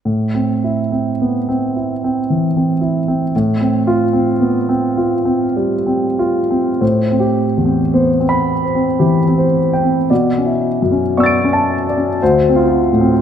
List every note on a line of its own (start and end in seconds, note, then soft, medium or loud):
0.05 3.29 A2 soft
0.35 0.80 C4 soft
0.64 1.09 E4 soft
0.92 1.37 C4 soft
1.21 1.49 B3 soft
1.49 1.92 C4 soft
1.76 2.19 E4 soft
2.04 2.45 C4 soft
2.30 2.71 E3 soft
2.57 2.97 C4 soft
2.81 3.23 E4 soft
3.08 3.34 C4 soft
3.36 6.79 A2 soft
3.61 4.03 C4 soft
3.87 4.30 F4 soft
4.13 4.57 C4 soft
4.40 4.68 B3 soft
4.69 5.14 C4 soft
4.97 5.44 F4 soft
5.25 5.74 C4 soft
5.56 6.06 G3 soft
5.87 6.38 C4 soft
6.19 6.70 F4 soft
6.51 6.81 C4 soft
6.81 10.06 A2 soft
6.81 7.43 C5 soft
7.11 7.57 C4 soft
7.20 7.80 G4 soft
7.57 8.16 E2 soft
7.65 8.10 C4 soft
7.94 8.21 B3 soft
7.94 8.52 C5 soft
8.20 8.64 C4 soft
8.29 8.87 B5 soft
8.64 9.23 C5 soft
8.75 9.18 C4 soft
8.99 9.44 E3 soft
8.99 9.59 G4 soft
9.27 9.72 C4 soft
9.38 9.96 C5 soft
9.73 10.10 G5 soft
9.83 10.10 C4 soft
10.10 12.17 B2 soft
10.10 10.67 D5 soft
10.38 10.80 C#4 soft
10.46 11.02 E4 soft
10.82 11.38 F#2 soft
10.92 11.33 C#4 soft
11.17 11.43 B3 soft
11.17 11.73 D5 soft
11.17 12.18 C#6 soft
11.17 12.19 E6 soft
11.23 12.21 A6 soft
11.23 12.22 D7 soft
11.44 11.85 C#4 soft
11.53 12.08 A5 medium
11.89 12.22 D5 soft
11.97 12.22 C#4 soft
12.22 13.21 D2 soft
12.22 12.78 C5 medium
12.49 12.91 C4 soft
12.56 13.13 F4 soft
12.93 13.21 A2 soft
13.01 13.21 C4 soft